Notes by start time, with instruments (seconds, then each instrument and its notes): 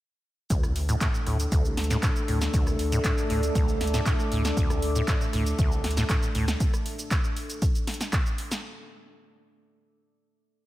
0.50 acid bass D2, analog synth pad A3 D4 A4, ambient pad A3, kick, closed hi-hat, shaker
0.63 acid bass C2, sub bass D2, cross-stick, shaker
0.76 sub bass D2, open hi-hat
0.89 acid bass A2, closed hi-hat, shaker
1.01 acid bass A2, ambient pad A4, kick, clap, closed hi-hat, shaker
1.14 ambient pad D5, shaker
1.26 sub bass D2, acid bass A2, cross-stick, open hi-hat
1.40 closed hi-hat, shaker
1.52 acid bass D2, kick, closed hi-hat, shaker
1.65 acid bass C2, shaker
1.77 sub bass D2, snare, open hi-hat
1.84 closed hi-hat
1.90 acid bass A2, ambient pad D6, snare, closed hi-hat, shaker
2.03 acid bass A2, kick, cross-stick, clap, closed hi-hat, shaker
2.16 shaker
2.28 sub bass D2, acid bass A2, open hi-hat
2.41 snare, closed hi-hat, shaker
2.54 acid bass D2, kick, closed hi-hat, shaker
2.67 acid bass C2, sub bass D2, cross-stick, shaker
2.79 sub bass D2, open hi-hat
2.92 acid bass A2, closed hi-hat, shaker
3.04 acid bass A2, kick, clap, closed hi-hat, shaker
3.18 shaker
3.30 sub bass D2, acid bass A2, open hi-hat
3.43 closed hi-hat, shaker
3.55 acid bass D2, kick, closed hi-hat, shaker
3.68 acid bass C2, shaker
3.81 sub bass D2, snare, open hi-hat
3.87 closed hi-hat
3.94 acid bass A2, snare, closed hi-hat, shaker
4.06 acid bass A2, kick, cross-stick, clap, closed hi-hat, shaker
4.19 shaker
4.32 sub bass D2, acid bass A2, open hi-hat
4.45 snare, closed hi-hat, shaker
4.57 acid bass D2, kick, closed hi-hat, shaker
4.70 acid bass C2, sub bass D2, cross-stick, shaker
4.82 sub bass D2, open hi-hat
4.96 acid bass A2, closed hi-hat, shaker
5.08 acid bass A2, kick, clap, closed hi-hat, shaker
5.21 shaker
5.33 sub bass D2, acid bass A2, cross-stick, open hi-hat
5.46 closed hi-hat, shaker
5.59 acid bass D2, kick, closed hi-hat, shaker
5.72 acid bass C2, shaker
5.84 sub bass D2, snare, open hi-hat
5.91 closed hi-hat
5.97 acid bass A2, snare, closed hi-hat, shaker
6.09 acid bass A2, kick, cross-stick, clap, closed hi-hat, shaker
6.23 shaker
6.35 sub bass D2, acid bass A2, open hi-hat
6.48 snare, closed hi-hat, shaker
6.60 kick, closed hi-hat, shaker
6.74 cross-stick, shaker
6.86 open hi-hat
6.99 closed hi-hat, shaker
7.11 kick, clap, closed hi-hat, shaker
7.24 shaker
7.37 open hi-hat
7.50 closed hi-hat, shaker
7.62 kick, closed hi-hat, shaker
7.75 shaker
7.87 snare, open hi-hat
7.94 closed hi-hat
8.01 snare, closed hi-hat, shaker
8.13 kick, cross-stick, clap, closed hi-hat, shaker
8.26 shaker
8.38 open hi-hat
8.51 snare, closed hi-hat, shaker